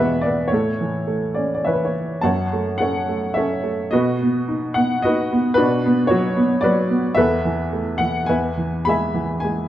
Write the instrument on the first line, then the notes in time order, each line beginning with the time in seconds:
upright piano
Already playing: E2 E3 G#3 D5 E5 F#5
0.00 B2 B4
0.21 D5
0.26 B4
0.48 C#5
0.52 A2 A4
0.81 E3
1.07 A3
1.34 C#4 D5
1.54 D5
1.65 E3 B4 C#5 E5
1.73 B4
1.85 C#5
2.21 F#2 C#5 F#5 A5
2.53 A3
2.78 A4 C#5 F#5
2.82 C#4
3.09 A3
3.34 C#4 A4 C#5 E5
3.63 A3
3.91 B2 F#4 B4 D#5
4.22 B3
4.48 D#4
4.74 B3 F#5
5.02 D#4 F#4 B4 D#5
5.32 B3
5.54 D4 F#4 B4
5.59 B2
5.86 B3
6.07 F#4 C#5
6.11 F#3
6.37 B3
6.61 F#3 F#4 B4 D5
6.90 B3
7.15 E2 A4 B4 E5
7.45 E3
7.73 A3
7.98 E3 F#5
8.26 E2 B4 E5 G#5
8.57 E3
8.85 G#3 G#5 B5
8.89 E5
9.14 E3
9.40 G#5
9.44 G#3